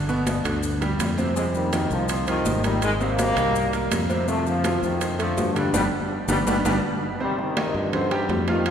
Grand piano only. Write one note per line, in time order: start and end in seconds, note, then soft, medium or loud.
0.09 0.38 B2 medium
0.09 0.39 B3 medium
0.45 0.75 D3 medium
0.45 0.75 D4 medium
0.81 1.11 G3 medium
0.81 1.11 G4 medium
1.18 1.33 C3 medium
1.18 1.33 C4 medium
1.36 1.66 C3 medium
1.36 1.66 C4 medium
1.73 2.03 D#3 medium
1.73 2.03 D#4 medium
2.09 2.24 C4 medium
2.09 2.24 C5 medium
2.27 2.57 F3 medium
2.27 2.57 F4 medium
2.63 2.94 D#3 medium
2.63 2.94 D#4 medium
3.00 3.30 C3 medium
3.00 3.30 C4 medium
3.36 3.66 D#3 medium
3.36 3.67 D#4 medium
3.73 4.03 A#3 medium
3.73 4.03 A#4 medium
4.09 4.24 C3 medium
4.09 4.25 C4 medium
4.28 4.58 C3 medium
4.28 4.58 C4 medium
4.64 4.94 F3 medium
4.64 4.94 F4 medium
5.01 5.16 C4 medium
5.01 5.16 C5 medium
5.19 5.49 A3 medium
5.19 5.49 A4 medium
5.56 5.71 D3 medium
5.56 5.71 D4 medium
5.74 5.85 G3 medium
5.74 5.86 B3 medium
5.74 5.86 D4 medium
6.29 6.40 G3 medium
6.29 6.40 B3 medium
6.29 6.40 D4 medium
6.47 6.59 G3 loud
6.47 6.59 B3 medium
6.47 6.59 D4 medium
6.65 6.77 G3 medium
6.65 6.77 B3 medium
6.65 6.77 D4 medium
7.20 7.50 C3 medium
7.20 7.50 C4 medium
7.20 7.50 C5 medium
7.57 7.87 D#3 medium
7.57 7.87 D#4 medium
7.57 7.87 D#5 medium
7.93 8.08 C4 medium
7.93 8.08 C5 medium
7.93 8.08 C6 medium
8.11 8.41 G3 medium
8.11 8.41 G4 medium
8.11 8.41 G5 medium
8.48 8.71 F3 medium
8.48 8.71 F4 medium
8.48 8.71 F5 medium